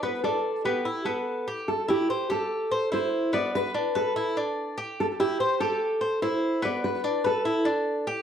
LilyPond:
<<
  \new Staff \with { instrumentName = "Nylon-string guitar" } { \time 4/4 \key a \minor \tempo 4 = 146 b'8 a'4 g'4 a'4 r8 | a'8 g'4 a'4. c''4 | d''8 b'4 a'2 r8 | a'8 g'4 a'4. c''4 |
d''8 b'4 a'2 r8 | }
  \new Staff \with { instrumentName = "Cuban tres" } { \time 4/4 \key a \minor b8 d'4 b8 e'8 b4 g'8 | r8 e'8 c''8 g'4 c''8 e'4 | b4 d'8 b'8 e'8 d'4 g'8~ | g'8 e'8 c''8 g'4 c''8 e'4 |
b4 d'8 b'8 e'8 d'4 g'8 | }
>>